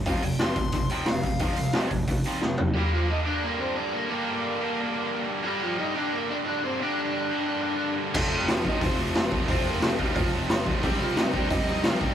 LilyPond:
<<
  \new Staff \with { instrumentName = "Overdriven electric guitar" } { \time 4/4 \key g \minor \tempo 4 = 178 f''8 g''8 c'''4. g''8 f''8 f''8~ | f''4. r2 r8 | <g g'>8 <f f'>8 <ees' ees''>8 <d' d''>8 <bes bes'>8 <c' c''>8 <d' d''>8 <bes bes'>8 | <bes bes'>2.~ <bes bes'>8 r8 |
<g g'>8 <f f'>8 <ees' ees''>8 <d' d''>8 <bes bes'>8 <d' d''>8 <d' d''>8 <c' c''>8 | <d' d''>2.~ <d' d''>8 r8 | <a a'>8 <g g'>8 <f f'>8 <ees' ees''>8 <c' c''>8 r4. | <c' c''>8 <bes bes'>8 <a a'>8 <g g'>8 <f f'>8 r4. |
<g g'>8 <f f'>8 <ees' ees''>8 <d' d''>8 <ees' ees''>8 <ees' ees''>8 <f f'>8 <g g'>8 | }
  \new Staff \with { instrumentName = "Distorted electric guitar" } { \clef bass \time 4/4 \key g \minor <f, c f>8 <f, c>8 <f, c f>8 <f, c>8 <f, c>8 <f, c f>8 <f, c>8 <f, c>8 | <f, c f>8 <f, c>8 <f, c f>8 <f, c>8 <f, c>8 <f, c f>8 <f, c>8 <f, c>8 | <g, d g bes d' g'>4. <g, d g bes d' g'>2~ <g, d g bes d' g'>8 | <g, d g bes d' g'>4. <g, d g bes d' g'>2~ <g, d g bes d' g'>8 |
<g, d g bes d' g'>4. <g, d g bes d' g'>2~ <g, d g bes d' g'>8 | <g, d g bes d' g'>4. <g, d g bes d' g'>2~ <g, d g bes d' g'>8 | <f, c f a c' f'>4. <f, c f a c' f'>2~ <f, c f a c' f'>8 | <f, c f a c' f'>4. <f, c f a c' f'>2~ <f, c f a c' f'>8 |
<c g c' ees' g'>4. <c g c' ees' g'>2~ <c g c' ees' g'>8 | }
  \new Staff \with { instrumentName = "Distorted electric guitar" } { \clef bass \time 4/4 \key g \minor r1 | r1 | r1 | r1 |
r1 | r1 | <f, c f>2.~ <f, c f>8 <f, c f>8 | <f, c f>2.~ <f, c f>8 <f, c f>8 |
<c g c'>2.~ <c g c'>8 <c g c'>8 | }
  \new Staff \with { instrumentName = "Picked electric bass" } { \clef bass \time 4/4 \key g \minor f,,8 f,,8 f,,8 f,,8 f,,8 ees,8 f,,8 f,,8 | f,,8 c,8 c,8 f,,8 ees,8 ees,8 f,,8 f,,8 | r1 | r1 |
r1 | r1 | f,,8 f,,8 f,,8 f,,8 f,,8 f,,8 f,,8 c,8 | f,,4 f,,8 ees,8 f,,8 f,,8 f,,8 bes,,8 |
c,8 c,8 c,8 c,8 c,8 c,8 c,8 g,8 | }
  \new DrumStaff \with { instrumentName = "Drums" } \drummode { \time 4/4 <hho bd>8 hho8 <hho sn>8 <hho bd>8 <hho bd>8 hho8 <hho sn>8 <hho bd>8 | <hho bd>8 hho8 <hho sn>8 <hho bd>8 <hho bd>8 hho8 sn8 tomfh8 | r4 r4 r4 r4 | r4 r4 r4 r4 |
r4 r4 r4 r4 | r4 r4 r4 r4 | <cymc bd>4 <hho sn>8 bd8 <hho bd>4 <hho sn>8 bd8 | <hho bd>4 <hho sn>8 bd8 <hho bd>4 <hho sn>8 bd8 |
<hho bd>4 <hho sn>8 bd8 <hho bd>4 <hho sn>8 bd8 | }
>>